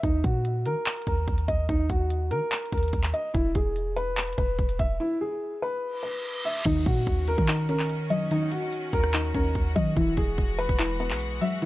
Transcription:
0.03 0.23 D#2 loud
0.03 0.19 D#4 medium
0.03 kick loud
0.03 closed hi-hat medium
0.24 0.67 A#2 loud
0.24 0.63 F#4 medium
0.24 kick loud
0.24 closed hi-hat medium
0.45 closed hi-hat medium
0.66 0.75 D#3 loud
0.66 1.05 A#4 medium
0.66 closed hi-hat medium
0.86 clap loud
0.86 closed hi-hat soft
0.91 closed hi-hat medium
0.97 closed hi-hat medium
1.02 closed hi-hat medium
1.07 1.27 D#2 loud
1.07 1.46 A#4 medium
1.07 kick medium
1.07 closed hi-hat medium
1.28 1.48 D#2 loud
1.28 kick medium
1.28 closed hi-hat soft
1.38 closed hi-hat medium
1.48 1.68 D#2 loud
1.48 1.64 D#5 medium
1.48 kick medium
1.48 closed hi-hat medium
1.69 1.89 D#2 loud
1.69 1.85 D#4 loud
1.69 kick loud
1.69 closed hi-hat medium
1.90 2.33 D#2 loud
1.90 2.29 F#4 medium
1.90 kick loud
1.90 closed hi-hat medium
2.10 closed hi-hat medium
2.31 2.41 D#3 loud
2.31 2.70 A#4 medium
2.31 closed hi-hat medium
2.52 clap loud
2.52 closed hi-hat medium
2.59 closed hi-hat medium
2.66 closed hi-hat soft
2.72 2.92 D#2 loud
2.72 3.12 A#4 medium
2.72 kick medium
2.72 closed hi-hat medium
2.78 closed hi-hat medium
2.83 closed hi-hat medium
2.88 closed hi-hat medium
2.93 3.13 D#2 loud
2.93 kick loud
2.93 closed hi-hat medium
3.03 clap medium
3.14 3.29 D#5 medium
3.14 closed hi-hat medium
3.34 3.54 E1 loud
3.34 3.50 E4 medium
3.34 kick loud
3.34 closed hi-hat medium
3.55 4.35 E1 loud
3.55 3.94 G#4 medium
3.55 kick medium
3.55 closed hi-hat medium
3.76 closed hi-hat medium
3.96 4.35 B4 medium
3.96 closed hi-hat medium
4.17 clap loud
4.17 closed hi-hat soft
4.22 closed hi-hat medium
4.28 closed hi-hat medium
4.33 closed hi-hat medium
4.38 4.58 E1 loud
4.38 4.77 B4 medium
4.38 kick medium
4.38 closed hi-hat medium
4.59 4.79 E1 loud
4.59 kick medium
4.59 closed hi-hat soft
4.69 closed hi-hat medium
4.79 4.99 E1 loud
4.79 4.95 E5 medium
4.79 kick medium
4.79 closed hi-hat medium
5.00 5.16 E4 medium
5.21 5.60 G#4 medium
5.62 6.01 B4 medium
5.83 reverse cymbal medium
6.03 6.42 B4 medium
6.45 6.61 E5 medium
6.65 6.85 D#2 loud
6.65 7.69 D#3 medium
6.65 9.93 D#3 medium
6.65 9.93 C#4 medium
6.65 6.81 D#4 medium
6.65 11.65 F#4 medium
6.65 kick loud
6.65 closed hi-hat medium
6.65 crash loud
6.65 impact medium
6.86 7.06 A#2 loud
6.86 7.25 F#4 medium
6.86 kick loud
6.86 closed hi-hat medium
7.07 7.37 D#2 loud
7.07 kick loud
7.07 closed hi-hat medium
7.28 7.67 A#4 medium
7.28 closed hi-hat medium
7.38 8.58 D#3 loud
7.38 kick loud
7.48 8.52 D#4 loud
7.48 clap loud
7.48 closed hi-hat medium
7.69 8.72 C#4 medium
7.69 8.08 A#4 medium
7.69 closed hi-hat medium
7.79 clap medium
7.89 closed hi-hat medium
8.10 9.14 F#3 medium
8.10 8.26 D#5 medium
8.10 closed hi-hat medium
8.31 9.34 D#3 medium
8.31 8.47 D#4 loud
8.31 closed hi-hat medium
8.52 8.91 F#4 medium
8.52 closed hi-hat medium
8.72 closed hi-hat medium
8.93 9.33 D#2 loud
8.93 9.32 A#4 medium
8.93 kick loud
8.93 closed hi-hat medium
9.04 cross-stick medium
9.14 9.97 D#4 loud
9.14 clap loud
9.14 closed hi-hat medium
9.34 9.54 D#2 loud
9.34 9.97 C#4 medium
9.34 9.74 A#4 medium
9.34 kick medium
9.34 closed hi-hat medium
9.55 9.75 D#2 loud
9.55 kick loud
9.55 closed hi-hat medium
9.76 9.96 D#3 loud
9.76 9.97 F#3 medium
9.76 9.92 D#5 medium
9.76 kick medium
9.76 closed hi-hat medium
9.96 10.16 E1 loud
9.96 11.00 E3 loud
9.96 11.65 E3 medium
9.96 11.65 G#3 medium
9.96 10.12 E4 medium
9.96 kick loud
9.96 closed hi-hat medium
10.17 10.37 E1 loud
10.17 10.56 G#4 medium
10.17 kick loud
10.17 closed hi-hat medium
10.38 10.68 E1 loud
10.38 kick loud
10.38 closed hi-hat medium
10.59 10.97 B4 loud
10.59 closed hi-hat medium
10.69 11.12 E1 loud
10.69 kick loud
10.79 11.65 E4 loud
10.79 clap loud
10.79 closed hi-hat medium
11.00 11.65 B3 medium
11.00 11.39 B4 medium
11.00 closed hi-hat medium
11.10 11.40 B1 loud
11.10 clap medium
11.21 closed hi-hat medium
11.41 11.65 F#3 medium
11.41 11.57 E5 medium
11.41 closed hi-hat medium
11.62 11.65 E3 loud
11.62 11.65 E4 medium
11.62 closed hi-hat medium

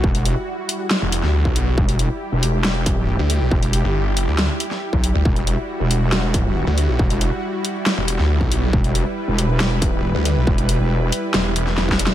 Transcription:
0.00 0.35 E1 loud
0.00 12.14 G3 medium
0.00 12.14 E4 medium
0.00 1.76 F#4 medium
0.00 kick loud
0.15 closed hi-hat soft
0.25 closed hi-hat medium
0.69 closed hi-hat medium
0.91 snare loud
1.02 1.22 E1 loud
1.12 closed hi-hat medium
1.23 1.43 D2 loud
1.23 snare soft
1.45 1.76 B1 loud
1.45 kick medium
1.56 closed hi-hat medium
1.77 2.09 E1 loud
1.77 5.24 G4 medium
1.77 kick loud
1.89 closed hi-hat soft
1.99 closed hi-hat medium
2.32 3.17 E1 loud
2.43 closed hi-hat medium
2.64 snare loud
2.86 kick loud
2.86 closed hi-hat medium
3.19 3.39 D2 loud
3.30 closed hi-hat medium
3.41 3.50 B1 loud
3.51 3.82 E1 medium
3.51 kick loud
3.63 closed hi-hat soft
3.73 closed hi-hat medium
3.84 4.26 G1 loud
4.17 closed hi-hat medium
4.28 4.48 D2 loud
4.38 snare loud
4.60 closed hi-hat medium
4.71 snare soft
4.93 5.13 B1 medium
4.93 kick medium
5.04 closed hi-hat medium
5.15 5.24 D2 loud
5.25 5.56 E1 loud
5.25 8.72 F#4 medium
5.25 kick loud
5.36 closed hi-hat soft
5.47 closed hi-hat medium
5.80 6.65 E1 loud
5.91 closed hi-hat medium
6.12 snare loud
6.34 kick loud
6.34 closed hi-hat medium
6.67 6.87 D2 loud
6.78 closed hi-hat medium
6.89 6.98 B1 loud
6.99 7.30 E1 medium
6.99 kick loud
7.10 closed hi-hat soft
7.21 closed hi-hat medium
7.65 closed hi-hat medium
7.86 snare loud
7.97 8.17 E1 loud
8.08 closed hi-hat medium
8.19 8.39 D2 loud
8.19 snare soft
8.41 8.72 B1 loud
8.41 kick medium
8.52 closed hi-hat medium
8.73 9.04 E1 loud
8.73 12.14 B4 medium
8.73 kick loud
8.84 closed hi-hat soft
8.95 closed hi-hat medium
9.28 10.13 E1 loud
9.38 closed hi-hat medium
9.60 snare loud
9.82 kick loud
9.82 closed hi-hat medium
10.15 10.35 D2 loud
10.25 closed hi-hat medium
10.37 10.46 B1 medium
10.47 10.78 E1 medium
10.47 kick loud
10.58 closed hi-hat soft
10.69 closed hi-hat medium
10.80 11.11 E1 medium
11.12 closed hi-hat medium
11.34 11.76 E1 loud
11.34 snare loud
11.56 closed hi-hat medium
11.67 snare soft
11.78 11.98 E1 loud
11.78 snare medium
11.89 kick medium
11.89 snare medium
11.99 12.14 E1 medium
11.99 closed hi-hat medium
12.07 snare loud

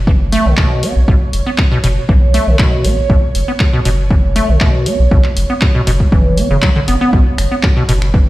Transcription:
0.00 0.37 F#1 medium
0.00 7.25 C#5 medium
0.07 0.12 E3 medium
0.07 kick loud
0.32 0.47 A3 loud
0.32 open hi-hat loud
0.46 0.53 B1 medium
0.46 0.56 D3 medium
0.57 0.84 B2 medium
0.57 kick loud
0.57 clap loud
0.83 0.94 B3 medium
0.83 open hi-hat loud
0.96 1.03 B1 loud
1.08 1.16 B1 loud
1.08 1.15 B2 medium
1.08 kick loud
1.33 1.41 F#1 medium
1.33 open hi-hat loud
1.46 1.50 B3 medium
1.58 1.63 B2 medium
1.58 kick loud
1.58 clap loud
1.72 1.78 B2 loud
1.84 1.99 F#1 medium
1.84 1.88 B2 medium
1.84 open hi-hat loud
2.09 2.39 B1 loud
2.09 2.13 E3 medium
2.09 kick loud
2.34 2.49 A3 loud
2.34 open hi-hat loud
2.47 2.55 B1 loud
2.47 2.57 D3 medium
2.59 2.86 B2 medium
2.59 kick loud
2.59 clap loud
2.85 3.00 A1 medium
2.85 2.95 B3 medium
2.85 open hi-hat loud
3.10 3.18 B1 loud
3.10 3.17 B2 medium
3.10 kick loud
3.35 3.43 F#1 medium
3.35 open hi-hat loud
3.48 3.52 B3 medium
3.60 3.65 B2 medium
3.60 kick loud
3.60 clap loud
3.73 3.80 B2 loud
3.85 4.41 F#1 medium
3.85 3.90 B2 loud
3.85 open hi-hat loud
4.11 4.15 E3 medium
4.11 kick loud
4.36 4.50 A3 loud
4.36 open hi-hat loud
4.49 4.56 B1 medium
4.49 4.59 D3 medium
4.60 4.88 B2 medium
4.60 kick loud
4.60 clap loud
4.86 4.97 B3 medium
4.86 open hi-hat loud
4.99 5.07 B1 loud
5.11 5.19 B1 loud
5.11 5.19 B2 medium
5.11 kick loud
5.24 clap soft
5.37 5.45 F#1 medium
5.37 open hi-hat loud
5.50 5.54 B3 medium
5.61 5.66 B2 medium
5.61 kick loud
5.61 clap loud
5.75 5.82 B2 loud
5.87 6.03 F#1 medium
5.87 5.91 B2 loud
5.87 open hi-hat loud
6.00 kick medium
6.12 6.42 F#1 medium
6.12 6.39 E3 medium
6.12 kick loud
6.37 6.48 B3 medium
6.37 open hi-hat loud
6.51 6.58 F#1 loud
6.51 6.57 C#3 medium
6.62 6.70 F#3 loud
6.62 kick loud
6.62 clap loud
6.76 6.80 D3 loud
6.88 6.96 F#1 loud
6.88 6.95 B3 medium
6.88 open hi-hat loud
7.01 7.11 B3 loud
7.09 7.21 B1 loud
7.09 8.29 B4 medium
7.09 kick loud
7.13 7.20 B2 medium
7.38 7.46 F#1 medium
7.38 finger snap medium
7.38 open hi-hat loud
7.51 7.55 B3 medium
7.63 7.68 B2 medium
7.63 kick loud
7.63 clap loud
7.77 7.83 B2 loud
7.89 8.29 F#1 medium
7.89 7.93 B2 loud
7.89 open hi-hat loud
8.02 finger snap medium
8.14 8.18 E3 medium
8.14 kick loud

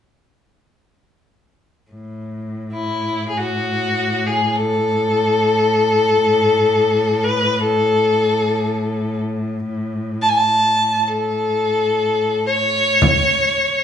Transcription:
1.91 13.14 A2 medium
2.73 3.26 E4 medium
3.29 3.39 G#4 soft
3.37 4.28 F#4 medium
4.26 4.57 G#4 medium
4.56 7.25 A4 medium
7.24 7.61 B4 medium
7.60 9.20 A4 medium
10.22 10.31 A5 medium
10.29 10.39 G#5 medium
10.37 11.10 A5 medium
11.08 12.46 A4 medium
12.47 13.84 C#5 medium
13.02 darbuka dum medium
13.02 frame drum medium
13.58 darbuka ka soft

